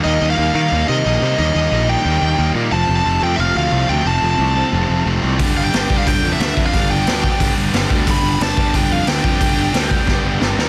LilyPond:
<<
  \new Staff \with { instrumentName = "Lead electric guitar" } { \time 4/4 \key g \mixolydian \tempo 4 = 179 ees''8. f''8. f''4 ees''4. | ees''4. g''2 r8 | a''8. a''8. g''16. e''32 f''8 f''4 g''8 | a''2. r4 |
r8 f''16 g''4 f''16 g''8. e''4 f''16~ | f''8 g''2 r4. | b''4 a''4 g''8 f''8 g''8 g''8~ | g''2.~ g''8 r8 | }
  \new Staff \with { instrumentName = "Distorted electric guitar" } { \clef bass \time 4/4 \key g \mixolydian <ees g bes ees'>4 <ees g bes ees'>8 <ees g bes ees'>8 <ees g bes ees'>4 <ees g bes ees'>8 <ees g bes ees'>8 | <ees g bes ees'>4 <ees g bes ees'>8 <ees g bes ees'>8 <ees g bes ees'>4 <ees g bes ees'>8 <ees g bes ees'>8 | <f, c f a c'>4 <f, c f a c'>8 <f, c f a c'>8 <f, c f a c'>4 <f, c f a c'>8 <f, c f a c'>8 | <f, c f a c'>4 <f, c f a c'>8 <f, c f a c'>8 <f, c f a c'>4 <f, c f a c'>8 <f, c f a c'>8 |
<g, d g b d'>4 <g, d g b d'>8 <g, d g b d'>8 <g, d g b d'>4 <g, d g b d'>8 <g, d g b d'>8 | <g, d g b d'>4 <g, d g b d'>8 <g, d g b d'>8 <g, d g b d'>4 <g, d g b d'>8 <g, d g b d'>8 | <g, d g b d'>4 <g, d g b d'>8 <g, d g b d'>8 <g, d g b d'>4 <g, d g b d'>8 <g, d g b d'>8 | <g, d g b d'>4 <g, d g b d'>8 <g, d g b d'>8 <g, d g b d'>4 <g, d g b d'>8 <ees g bes ees'>8 | }
  \new Staff \with { instrumentName = "Distorted electric guitar" } { \clef bass \time 4/4 \key g \mixolydian r1 | r1 | r1 | r1 |
<g, d g>4 <g, d g>8 <g, d g>8 <g, d g>4 <g, d g>8 <g, d g>8 | <g, d g>4 <g, d g>8 <g, d g>8 <g, d g>4 <g, d g>8 <g, d g>8 | <g, d g>4 <g, d g>8 <g, d g>8 <g, d g>4 <g, d g>8 <g, d g>8 | <g, d g>4 <g, d g>8 <g, d g>8 <g, d g>4 <g, d g>8 <ees bes ees'>8 | }
  \new Staff \with { instrumentName = "Picked electric bass" } { \clef bass \time 4/4 \key g \mixolydian ees,8 ees,8 ees,8 ees8 ees,8 c8 bes,,8 c8 | ees,8 ees,8 bes,,4 ees,8 ees,8 ees,8 bes,8 | f,,8 f,,8 f,,8 f,8 f,,8 d,8 c,8 d,8 | f,,8 f,,8 c,4 f,,8 f,,8 f,,8 c,8 |
g,,8 g,,8 g,,8 g,8 g,,8 f,8 d,8 f,8 | g,,8 g,,8 d,4 g,,8 g,,8 g,,8 d,8 | g,,8 g,,8 g,,8 g,8 g,,8 f,8 d,8 f,8 | g,,8 g,,8 d,4 g,,8 g,,8 g,,8 ees,8 | }
  \new DrumStaff \with { instrumentName = "Drums" } \drummode { \time 4/4 r4 r4 r4 r4 | r4 r4 r4 r4 | r4 r4 r4 r4 | r4 r4 r4 r4 |
<hho bd>4 <hho sn>8 bd8 <hho bd>4 <hho sn>8 bd8 | <hho bd>4 <hho sn>8 bd8 <hho bd>4 <hho sn>8 bd8 | <hho bd>4 <hho sn>8 bd8 <hho bd>4 <hho sn>8 bd8 | <hho bd>4 <hho sn>8 bd8 <bd sn>4 sn8 sn8 | }
>>